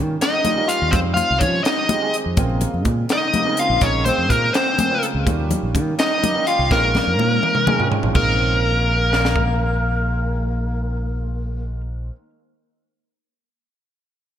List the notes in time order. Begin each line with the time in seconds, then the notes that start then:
Already playing: D#3 G3 A#3 C#4 F4
0.21 D#4 D#5, snare, closed hi-hat
0.45 D#3 G3 A#3 C#4 F4, closed hi-hat, muted conga, high conga, low conga
0.57 D#3 G3 A#3 C#4 F4
0.68 F4 F5, closed hi-hat
0.82 D#2
0.91 F2 D#3 G3 G#3 C4 F4 C5, kick, closed hi-hat, muted conga, low conga
1.14 F4 F5, closed hi-hat, high conga, low conga
1.30 C2
1.39 F3 C#4 C#5, kick, closed hi-hat, muted conga
1.64 D#4 D#5, snare, closed hi-hat
1.77 low conga
1.89 D#3 G3 G#3 C4 F4, closed hi-hat, muted conga, high conga, low conga
2.01 D#3 G#3 C4 G4 G#4, low conga
2.14 closed hi-hat
2.26 F2
2.37 A#1 C#3 G#3 A#3 C4 F4, kick, closed hi-hat, muted conga
2.50 low conga
2.61 closed hi-hat, high conga, low conga
2.74 F2, low conga
2.85 A#2, kick, closed hi-hat, muted conga, low conga
3.09 D#5, snare, closed hi-hat
3.13 D#4
3.33 C#3 G#3 A#3 C4 G4, closed hi-hat, muted conga, high conga, low conga
3.46 C#3 G#3 A#3 C4 D#4
3.57 F4 F5, closed hi-hat
3.70 A#1
3.81 A#1 C#3 G#3 A#3 C4 C#4 D#4 C#5, kick, closed hi-hat, muted conga
3.94 low conga
4.05 C4 C5, closed hi-hat, high conga, low conga
4.18 F2
4.29 A#2 A#3 A#4, kick, closed hi-hat, muted conga, low conga
4.53 C4 C5, snare, closed hi-hat
4.78 C#3 G#3 A#3 C4 G#4, closed hi-hat, muted conga, high conga, low conga
4.91 C#3 G#3 A#3 C4 F4
5.03 closed hi-hat
5.15 C#2
5.26 D#2 D#3 G3 A#3 C#4 F4, kick, closed hi-hat, muted conga
5.40 low conga
5.51 closed hi-hat, high conga, low conga
5.63 A#1, low conga
5.75 D#3, kick, closed hi-hat, muted conga, low conga
5.99 D#4 D#5, snare, closed hi-hat
6.22 D#3 G3 A#3 C#4 G4, closed hi-hat, muted conga, high conga, low conga
6.34 D#3 G3 A#3 C#4 G4
6.47 F4 F5, closed hi-hat
6.59 C2
6.70 A#1 D#3 G#3 A#3 C4 C#4 F4 A#4, kick, snare, muted conga, low conga
6.95 snare, high conga, low conga
7.07 F2
7.19 A#2, high tom, muted conga
7.43 mid tom, low conga
7.55 mid tom, low conga
7.66 D#3 G#3 C4 C#4 G#4 G#5, mid tom, muted conga, high conga, low conga
7.79 D#3 G#3 C4 C#4 F4, floor tom, low conga
7.91 C#5, floor tom
8.03 A#1, floor tom
8.12 A#1 D#3 G#3 A#3 C4 C#4 F4 A#4, kick, crash, muted conga
9.13 snare
9.25 snare
9.36 kick